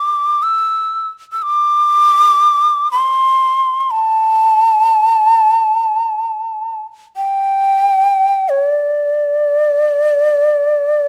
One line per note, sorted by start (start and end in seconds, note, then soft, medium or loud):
0.00 0.44 D6 medium
0.42 1.08 E6 medium
1.32 1.44 E6 medium
1.42 2.91 D6 medium
2.92 3.80 C6 medium
3.80 3.92 C6 medium
3.91 6.82 A5 medium
7.17 8.51 G5 medium
8.49 8.65 C#5 medium
8.65 11.08 D5 medium